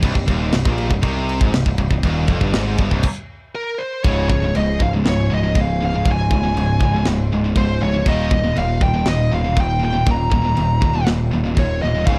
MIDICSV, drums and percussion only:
0, 0, Header, 1, 2, 480
1, 0, Start_track
1, 0, Tempo, 502092
1, 25, Time_signature, 4, 2, 24, 8
1, 11652, End_track
2, 0, Start_track
2, 0, Title_t, "Drums"
2, 26, Note_on_c, 9, 36, 110
2, 28, Note_on_c, 9, 49, 89
2, 121, Note_off_c, 9, 36, 0
2, 124, Note_off_c, 9, 49, 0
2, 146, Note_on_c, 9, 36, 81
2, 242, Note_off_c, 9, 36, 0
2, 266, Note_on_c, 9, 36, 91
2, 269, Note_on_c, 9, 49, 71
2, 362, Note_off_c, 9, 36, 0
2, 365, Note_off_c, 9, 49, 0
2, 501, Note_on_c, 9, 49, 87
2, 504, Note_on_c, 9, 38, 112
2, 597, Note_off_c, 9, 49, 0
2, 600, Note_off_c, 9, 38, 0
2, 625, Note_on_c, 9, 36, 107
2, 721, Note_off_c, 9, 36, 0
2, 745, Note_on_c, 9, 49, 66
2, 840, Note_off_c, 9, 49, 0
2, 866, Note_on_c, 9, 36, 90
2, 961, Note_off_c, 9, 36, 0
2, 982, Note_on_c, 9, 49, 79
2, 985, Note_on_c, 9, 36, 100
2, 1078, Note_off_c, 9, 49, 0
2, 1081, Note_off_c, 9, 36, 0
2, 1233, Note_on_c, 9, 49, 66
2, 1328, Note_off_c, 9, 49, 0
2, 1347, Note_on_c, 9, 36, 110
2, 1443, Note_off_c, 9, 36, 0
2, 1469, Note_on_c, 9, 49, 86
2, 1471, Note_on_c, 9, 38, 120
2, 1564, Note_off_c, 9, 49, 0
2, 1567, Note_off_c, 9, 38, 0
2, 1587, Note_on_c, 9, 36, 88
2, 1682, Note_off_c, 9, 36, 0
2, 1699, Note_on_c, 9, 49, 61
2, 1705, Note_on_c, 9, 36, 86
2, 1795, Note_off_c, 9, 49, 0
2, 1800, Note_off_c, 9, 36, 0
2, 1822, Note_on_c, 9, 36, 88
2, 1918, Note_off_c, 9, 36, 0
2, 1944, Note_on_c, 9, 36, 95
2, 1945, Note_on_c, 9, 49, 83
2, 2039, Note_off_c, 9, 36, 0
2, 2040, Note_off_c, 9, 49, 0
2, 2175, Note_on_c, 9, 49, 61
2, 2182, Note_on_c, 9, 36, 102
2, 2271, Note_off_c, 9, 49, 0
2, 2277, Note_off_c, 9, 36, 0
2, 2305, Note_on_c, 9, 36, 85
2, 2400, Note_off_c, 9, 36, 0
2, 2424, Note_on_c, 9, 49, 87
2, 2427, Note_on_c, 9, 38, 117
2, 2519, Note_off_c, 9, 49, 0
2, 2522, Note_off_c, 9, 38, 0
2, 2655, Note_on_c, 9, 49, 63
2, 2663, Note_on_c, 9, 36, 100
2, 2751, Note_off_c, 9, 49, 0
2, 2759, Note_off_c, 9, 36, 0
2, 2785, Note_on_c, 9, 36, 80
2, 2881, Note_off_c, 9, 36, 0
2, 2895, Note_on_c, 9, 57, 111
2, 2903, Note_on_c, 9, 36, 100
2, 2991, Note_off_c, 9, 57, 0
2, 2999, Note_off_c, 9, 36, 0
2, 3861, Note_on_c, 9, 49, 63
2, 3867, Note_on_c, 9, 36, 110
2, 3956, Note_off_c, 9, 49, 0
2, 3962, Note_off_c, 9, 36, 0
2, 4106, Note_on_c, 9, 36, 88
2, 4202, Note_off_c, 9, 36, 0
2, 4347, Note_on_c, 9, 49, 62
2, 4443, Note_off_c, 9, 49, 0
2, 4589, Note_on_c, 9, 36, 84
2, 4685, Note_off_c, 9, 36, 0
2, 4831, Note_on_c, 9, 49, 61
2, 4834, Note_on_c, 9, 38, 108
2, 4926, Note_off_c, 9, 49, 0
2, 4929, Note_off_c, 9, 38, 0
2, 5308, Note_on_c, 9, 36, 89
2, 5311, Note_on_c, 9, 49, 64
2, 5404, Note_off_c, 9, 36, 0
2, 5407, Note_off_c, 9, 49, 0
2, 5786, Note_on_c, 9, 49, 59
2, 5788, Note_on_c, 9, 36, 115
2, 5881, Note_off_c, 9, 49, 0
2, 5884, Note_off_c, 9, 36, 0
2, 6030, Note_on_c, 9, 36, 89
2, 6125, Note_off_c, 9, 36, 0
2, 6278, Note_on_c, 9, 49, 64
2, 6374, Note_off_c, 9, 49, 0
2, 6506, Note_on_c, 9, 36, 89
2, 6602, Note_off_c, 9, 36, 0
2, 6742, Note_on_c, 9, 49, 66
2, 6744, Note_on_c, 9, 38, 110
2, 6837, Note_off_c, 9, 49, 0
2, 6840, Note_off_c, 9, 38, 0
2, 7224, Note_on_c, 9, 49, 69
2, 7225, Note_on_c, 9, 36, 92
2, 7320, Note_off_c, 9, 36, 0
2, 7320, Note_off_c, 9, 49, 0
2, 7703, Note_on_c, 9, 49, 67
2, 7706, Note_on_c, 9, 36, 109
2, 7798, Note_off_c, 9, 49, 0
2, 7802, Note_off_c, 9, 36, 0
2, 7945, Note_on_c, 9, 36, 93
2, 8041, Note_off_c, 9, 36, 0
2, 8187, Note_on_c, 9, 49, 67
2, 8282, Note_off_c, 9, 49, 0
2, 8424, Note_on_c, 9, 36, 90
2, 8519, Note_off_c, 9, 36, 0
2, 8656, Note_on_c, 9, 49, 68
2, 8659, Note_on_c, 9, 38, 112
2, 8752, Note_off_c, 9, 49, 0
2, 8755, Note_off_c, 9, 38, 0
2, 9146, Note_on_c, 9, 36, 94
2, 9147, Note_on_c, 9, 49, 63
2, 9242, Note_off_c, 9, 36, 0
2, 9243, Note_off_c, 9, 49, 0
2, 9619, Note_on_c, 9, 49, 60
2, 9623, Note_on_c, 9, 36, 116
2, 9715, Note_off_c, 9, 49, 0
2, 9719, Note_off_c, 9, 36, 0
2, 9862, Note_on_c, 9, 36, 83
2, 9957, Note_off_c, 9, 36, 0
2, 10102, Note_on_c, 9, 49, 59
2, 10197, Note_off_c, 9, 49, 0
2, 10342, Note_on_c, 9, 36, 84
2, 10438, Note_off_c, 9, 36, 0
2, 10577, Note_on_c, 9, 49, 64
2, 10580, Note_on_c, 9, 38, 106
2, 10673, Note_off_c, 9, 49, 0
2, 10676, Note_off_c, 9, 38, 0
2, 11060, Note_on_c, 9, 36, 94
2, 11061, Note_on_c, 9, 49, 66
2, 11155, Note_off_c, 9, 36, 0
2, 11156, Note_off_c, 9, 49, 0
2, 11537, Note_on_c, 9, 36, 113
2, 11540, Note_on_c, 9, 49, 62
2, 11633, Note_off_c, 9, 36, 0
2, 11635, Note_off_c, 9, 49, 0
2, 11652, End_track
0, 0, End_of_file